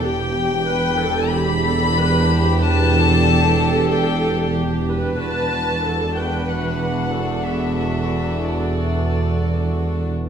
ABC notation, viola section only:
X:1
M:4/4
L:1/8
Q:1/4=93
K:Em
V:1 name="Viola section"
G2 B A G A B G | B A4- A G B- | B2 A B3 A2 | A6- A z |]